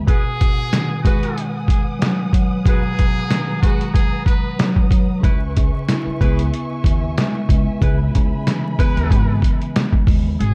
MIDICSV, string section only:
0, 0, Header, 1, 2, 480
1, 0, Start_track
1, 0, Tempo, 645161
1, 55, Time_signature, 4, 2, 24, 8
1, 7842, End_track
2, 0, Start_track
2, 0, Title_t, "String section"
2, 0, Program_c, 0, 48
2, 60, Note_on_c, 0, 87, 91
2, 61, Note_on_c, 0, 78, 76
2, 61, Note_on_c, 0, 80, 80
2, 62, Note_on_c, 0, 71, 82
2, 1959, Note_off_c, 0, 80, 0
2, 1974, Note_on_c, 0, 82, 80
2, 3868, Note_off_c, 0, 78, 0
2, 3868, Note_off_c, 0, 87, 0
2, 3875, Note_off_c, 0, 82, 0
2, 3898, Note_on_c, 0, 85, 88
2, 3899, Note_on_c, 0, 76, 80
2, 3899, Note_on_c, 0, 80, 77
2, 5798, Note_off_c, 0, 85, 0
2, 5814, Note_on_c, 0, 83, 96
2, 7707, Note_off_c, 0, 76, 0
2, 7707, Note_off_c, 0, 80, 0
2, 7709, Note_off_c, 0, 71, 0
2, 7715, Note_off_c, 0, 83, 0
2, 7842, End_track
0, 0, End_of_file